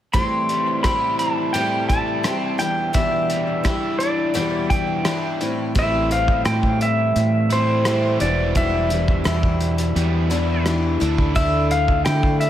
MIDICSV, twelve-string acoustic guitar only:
0, 0, Header, 1, 2, 480
1, 0, Start_track
1, 0, Key_signature, 0, "minor"
1, 0, Tempo, 700935
1, 99, Time_signature, 4, 2, 24, 8
1, 8559, End_track
2, 0, Start_track
2, 0, Title_t, "Twelve-string acoustic guitar"
2, 0, Program_c, 0, 25
2, 90, Note_on_c, 0, 45, 54
2, 93, Note_on_c, 0, 52, 60
2, 95, Note_on_c, 0, 55, 65
2, 99, Note_on_c, 0, 67, 67
2, 100, Note_on_c, 0, 60, 74
2, 571, Note_off_c, 0, 52, 0
2, 573, Note_off_c, 0, 60, 0
2, 574, Note_on_c, 0, 52, 51
2, 576, Note_off_c, 0, 45, 0
2, 576, Note_off_c, 0, 55, 0
2, 578, Note_on_c, 0, 55, 56
2, 581, Note_on_c, 0, 60, 50
2, 583, Note_off_c, 0, 67, 0
2, 586, Note_on_c, 0, 67, 57
2, 1052, Note_on_c, 0, 45, 66
2, 1054, Note_off_c, 0, 52, 0
2, 1054, Note_off_c, 0, 60, 0
2, 1057, Note_on_c, 0, 52, 64
2, 1059, Note_off_c, 0, 55, 0
2, 1062, Note_off_c, 0, 67, 0
2, 1062, Note_on_c, 0, 55, 66
2, 1063, Note_on_c, 0, 60, 68
2, 1064, Note_on_c, 0, 67, 77
2, 1527, Note_off_c, 0, 52, 0
2, 1530, Note_on_c, 0, 52, 51
2, 1535, Note_off_c, 0, 60, 0
2, 1536, Note_off_c, 0, 55, 0
2, 1538, Note_off_c, 0, 45, 0
2, 1539, Note_on_c, 0, 55, 49
2, 1543, Note_on_c, 0, 60, 60
2, 1544, Note_off_c, 0, 67, 0
2, 1547, Note_on_c, 0, 67, 53
2, 1765, Note_off_c, 0, 67, 0
2, 1767, Note_on_c, 0, 64, 40
2, 1770, Note_off_c, 0, 55, 0
2, 1771, Note_off_c, 0, 60, 0
2, 1773, Note_off_c, 0, 52, 0
2, 1773, Note_on_c, 0, 62, 36
2, 1778, Note_on_c, 0, 55, 37
2, 1782, Note_on_c, 0, 52, 34
2, 2005, Note_off_c, 0, 52, 0
2, 2007, Note_on_c, 0, 40, 63
2, 2009, Note_off_c, 0, 55, 0
2, 2010, Note_off_c, 0, 62, 0
2, 2010, Note_on_c, 0, 47, 65
2, 2012, Note_off_c, 0, 64, 0
2, 2014, Note_on_c, 0, 52, 66
2, 2017, Note_on_c, 0, 55, 65
2, 2018, Note_on_c, 0, 62, 66
2, 2021, Note_on_c, 0, 64, 69
2, 2481, Note_off_c, 0, 52, 0
2, 2489, Note_off_c, 0, 55, 0
2, 2490, Note_off_c, 0, 62, 0
2, 2490, Note_on_c, 0, 52, 57
2, 2495, Note_off_c, 0, 40, 0
2, 2496, Note_off_c, 0, 64, 0
2, 2497, Note_off_c, 0, 47, 0
2, 2498, Note_on_c, 0, 55, 61
2, 2498, Note_on_c, 0, 62, 58
2, 2504, Note_on_c, 0, 64, 63
2, 2967, Note_off_c, 0, 52, 0
2, 2969, Note_off_c, 0, 55, 0
2, 2971, Note_on_c, 0, 40, 72
2, 2972, Note_off_c, 0, 62, 0
2, 2974, Note_off_c, 0, 64, 0
2, 2975, Note_on_c, 0, 47, 71
2, 2975, Note_on_c, 0, 52, 64
2, 2977, Note_on_c, 0, 55, 72
2, 2980, Note_on_c, 0, 62, 70
2, 2982, Note_on_c, 0, 64, 75
2, 3447, Note_off_c, 0, 52, 0
2, 3453, Note_off_c, 0, 55, 0
2, 3455, Note_on_c, 0, 52, 60
2, 3457, Note_off_c, 0, 40, 0
2, 3457, Note_off_c, 0, 62, 0
2, 3460, Note_off_c, 0, 47, 0
2, 3461, Note_off_c, 0, 64, 0
2, 3462, Note_on_c, 0, 55, 57
2, 3465, Note_on_c, 0, 62, 57
2, 3469, Note_on_c, 0, 64, 62
2, 3693, Note_off_c, 0, 64, 0
2, 3700, Note_off_c, 0, 52, 0
2, 3701, Note_on_c, 0, 64, 39
2, 3703, Note_off_c, 0, 55, 0
2, 3705, Note_off_c, 0, 62, 0
2, 3712, Note_on_c, 0, 60, 41
2, 3716, Note_on_c, 0, 55, 36
2, 3936, Note_off_c, 0, 60, 0
2, 3936, Note_on_c, 0, 45, 65
2, 3937, Note_off_c, 0, 55, 0
2, 3938, Note_off_c, 0, 64, 0
2, 3940, Note_on_c, 0, 52, 69
2, 3945, Note_on_c, 0, 55, 64
2, 3945, Note_on_c, 0, 60, 69
2, 3946, Note_on_c, 0, 64, 71
2, 4175, Note_off_c, 0, 60, 0
2, 4180, Note_off_c, 0, 45, 0
2, 4182, Note_off_c, 0, 52, 0
2, 4182, Note_off_c, 0, 55, 0
2, 4183, Note_on_c, 0, 60, 42
2, 4185, Note_off_c, 0, 64, 0
2, 4190, Note_on_c, 0, 55, 37
2, 4413, Note_off_c, 0, 55, 0
2, 4415, Note_on_c, 0, 52, 52
2, 4417, Note_off_c, 0, 60, 0
2, 4421, Note_on_c, 0, 55, 49
2, 4425, Note_on_c, 0, 60, 52
2, 4432, Note_on_c, 0, 64, 55
2, 5137, Note_off_c, 0, 64, 0
2, 5139, Note_off_c, 0, 60, 0
2, 5140, Note_on_c, 0, 64, 43
2, 5142, Note_off_c, 0, 55, 0
2, 5147, Note_on_c, 0, 60, 41
2, 5155, Note_on_c, 0, 55, 40
2, 5379, Note_off_c, 0, 55, 0
2, 5380, Note_off_c, 0, 52, 0
2, 5381, Note_off_c, 0, 64, 0
2, 5383, Note_on_c, 0, 52, 54
2, 5385, Note_off_c, 0, 60, 0
2, 5387, Note_on_c, 0, 55, 51
2, 5394, Note_on_c, 0, 60, 49
2, 5397, Note_on_c, 0, 64, 57
2, 5616, Note_off_c, 0, 64, 0
2, 5623, Note_off_c, 0, 52, 0
2, 5624, Note_on_c, 0, 64, 42
2, 5625, Note_off_c, 0, 55, 0
2, 5628, Note_off_c, 0, 60, 0
2, 5632, Note_on_c, 0, 62, 40
2, 5637, Note_on_c, 0, 55, 38
2, 5641, Note_on_c, 0, 52, 34
2, 5856, Note_off_c, 0, 52, 0
2, 5858, Note_on_c, 0, 40, 66
2, 5859, Note_off_c, 0, 55, 0
2, 5863, Note_off_c, 0, 62, 0
2, 5863, Note_off_c, 0, 64, 0
2, 5863, Note_on_c, 0, 47, 68
2, 5864, Note_on_c, 0, 52, 59
2, 5867, Note_on_c, 0, 55, 73
2, 5871, Note_on_c, 0, 62, 71
2, 5871, Note_on_c, 0, 64, 75
2, 6086, Note_off_c, 0, 64, 0
2, 6095, Note_off_c, 0, 62, 0
2, 6095, Note_on_c, 0, 64, 45
2, 6098, Note_off_c, 0, 55, 0
2, 6100, Note_off_c, 0, 40, 0
2, 6101, Note_off_c, 0, 52, 0
2, 6103, Note_off_c, 0, 47, 0
2, 6103, Note_on_c, 0, 62, 42
2, 6106, Note_on_c, 0, 55, 42
2, 6110, Note_on_c, 0, 52, 37
2, 6320, Note_off_c, 0, 52, 0
2, 6327, Note_off_c, 0, 55, 0
2, 6328, Note_on_c, 0, 52, 55
2, 6333, Note_off_c, 0, 62, 0
2, 6335, Note_on_c, 0, 55, 61
2, 6338, Note_off_c, 0, 64, 0
2, 6341, Note_on_c, 0, 62, 54
2, 6346, Note_on_c, 0, 64, 63
2, 7050, Note_off_c, 0, 62, 0
2, 7051, Note_off_c, 0, 64, 0
2, 7053, Note_on_c, 0, 64, 51
2, 7055, Note_off_c, 0, 55, 0
2, 7059, Note_on_c, 0, 62, 45
2, 7063, Note_on_c, 0, 55, 45
2, 7064, Note_off_c, 0, 52, 0
2, 7066, Note_on_c, 0, 52, 47
2, 7291, Note_off_c, 0, 52, 0
2, 7296, Note_off_c, 0, 55, 0
2, 7297, Note_off_c, 0, 64, 0
2, 7299, Note_off_c, 0, 62, 0
2, 7300, Note_on_c, 0, 52, 57
2, 7304, Note_on_c, 0, 55, 58
2, 7307, Note_on_c, 0, 62, 66
2, 7310, Note_on_c, 0, 64, 62
2, 7525, Note_off_c, 0, 64, 0
2, 7531, Note_off_c, 0, 62, 0
2, 7533, Note_on_c, 0, 64, 45
2, 7540, Note_off_c, 0, 52, 0
2, 7540, Note_on_c, 0, 62, 43
2, 7542, Note_off_c, 0, 55, 0
2, 7549, Note_on_c, 0, 57, 39
2, 7770, Note_off_c, 0, 57, 0
2, 7773, Note_off_c, 0, 62, 0
2, 7774, Note_on_c, 0, 50, 66
2, 7776, Note_off_c, 0, 64, 0
2, 7778, Note_on_c, 0, 57, 71
2, 7781, Note_on_c, 0, 62, 62
2, 7785, Note_on_c, 0, 64, 67
2, 8016, Note_off_c, 0, 50, 0
2, 8016, Note_off_c, 0, 62, 0
2, 8018, Note_off_c, 0, 57, 0
2, 8022, Note_off_c, 0, 64, 0
2, 8024, Note_on_c, 0, 62, 39
2, 8029, Note_on_c, 0, 57, 41
2, 8250, Note_off_c, 0, 57, 0
2, 8253, Note_on_c, 0, 50, 59
2, 8256, Note_off_c, 0, 62, 0
2, 8259, Note_on_c, 0, 57, 54
2, 8264, Note_on_c, 0, 62, 58
2, 8268, Note_on_c, 0, 64, 66
2, 8559, Note_off_c, 0, 50, 0
2, 8559, Note_off_c, 0, 57, 0
2, 8559, Note_off_c, 0, 62, 0
2, 8559, Note_off_c, 0, 64, 0
2, 8559, End_track
0, 0, End_of_file